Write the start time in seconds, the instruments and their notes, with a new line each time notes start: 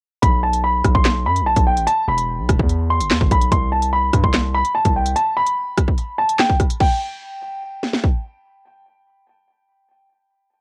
0.22 808-style bass B1, grand piano B5, kick, closed hi-hat
0.43 grand piano A5
0.53 closed hi-hat
0.64 grand piano B5
0.84 808-style bass B1, kick, cross-stick, closed hi-hat
0.95 808-style bass B1, grand piano C6, kick
1.05 snare, clap, closed hi-hat
1.26 808-style bass F#2, grand piano B5
1.36 closed hi-hat
1.41 808-style bass B1
1.46 grand piano A5
1.56 808-style bass B1, kick, closed hi-hat
1.67 grand piano G5
1.77 808-style bass A1, closed hi-hat
1.87 grand piano A5, closed hi-hat
2.08 808-style bass E1, grand piano B5
2.18 closed hi-hat
2.39 808-style bass B1
2.49 808-style bass E1, kick, cross-stick, closed hi-hat
2.59 808-style bass E2, kick
2.69 closed hi-hat
2.90 grand piano C6
3.00 808-style bass F#1, closed hi-hat
3.10 808-style bass E2, snare, clap
3.21 808-style bass G1, kick
3.31 808-style bass B1, grand piano B5, kick, closed hi-hat
3.41 closed hi-hat
3.52 808-style bass C2, grand piano C6, kick, closed hi-hat
3.72 grand piano A5
3.82 closed hi-hat
3.93 grand piano B5
4.13 808-style bass G2, kick, cross-stick, closed hi-hat
4.24 808-style bass C2, grand piano C6, kick
4.34 snare, clap, closed hi-hat
4.55 grand piano B5
4.65 closed hi-hat
4.75 grand piano A5
4.85 808-style bass C2, kick, closed hi-hat
4.96 grand piano G5
5.06 closed hi-hat
5.16 grand piano A5, closed hi-hat
5.37 grand piano B5
5.47 closed hi-hat
5.78 kick, cross-stick, closed hi-hat
5.88 kick
5.98 closed hi-hat
6.18 grand piano A5
6.29 closed hi-hat
6.39 grand piano G5, snare, clap
6.50 kick
6.60 kick, cross-stick, closed hi-hat
6.70 closed hi-hat
6.80 grand piano G5, kick, crash
7.83 snare
7.93 snare
8.04 kick